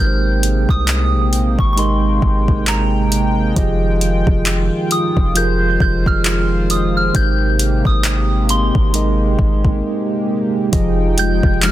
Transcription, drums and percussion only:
0.43 closed hi-hat medium
0.69 kick medium
0.88 clap loud
0.88 closed hi-hat medium
1.33 closed hi-hat medium
1.59 kick medium
1.77 closed hi-hat medium
2.22 kick medium
2.48 kick medium
2.67 clap loud
2.67 closed hi-hat medium
3.12 closed hi-hat medium
3.56 kick loud
3.56 closed hi-hat medium
4.01 closed hi-hat medium
4.27 kick medium
4.46 clap loud
4.46 closed hi-hat medium
4.91 closed hi-hat medium
5.17 kick medium
5.36 closed hi-hat medium
5.80 kick medium
6.06 kick medium
6.25 clap loud
6.25 closed hi-hat medium
6.70 closed hi-hat medium
7.15 kick loud
7.15 closed hi-hat medium
7.59 closed hi-hat medium
7.85 kick medium
8.04 clap loud
8.04 closed hi-hat medium
8.49 closed hi-hat medium
8.75 kick medium
8.94 closed hi-hat medium
9.39 kick medium
9.65 kick medium
10.73 kick loud
10.73 closed hi-hat medium
11.18 closed hi-hat medium
11.43 kick medium
11.62 clap loud
11.62 closed hi-hat medium

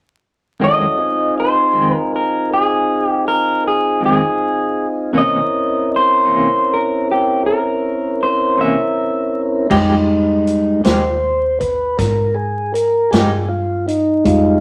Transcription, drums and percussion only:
9.71 kick medium
9.71 crash medium
10.47 closed hi-hat soft
10.84 snare medium
10.84 closed hi-hat medium
11.60 kick medium
11.60 closed hi-hat soft
11.99 kick loud
11.99 snare soft
11.99 closed hi-hat medium
12.75 closed hi-hat soft
13.12 snare medium
13.12 closed hi-hat medium
13.88 closed hi-hat medium
14.25 kick medium
14.25 closed hi-hat medium

